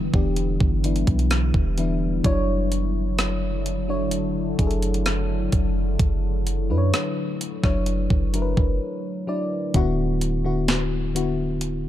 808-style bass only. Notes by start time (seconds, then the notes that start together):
0.14 E1
0.61 G1
1.08 B1
1.54 E1
2.25 F#1
4.59 F#1
5.53 F#1
6.00 F#1
6.70 F#2
7.64 F#1
8.11 F#1
8.57 F#1
9.75 D1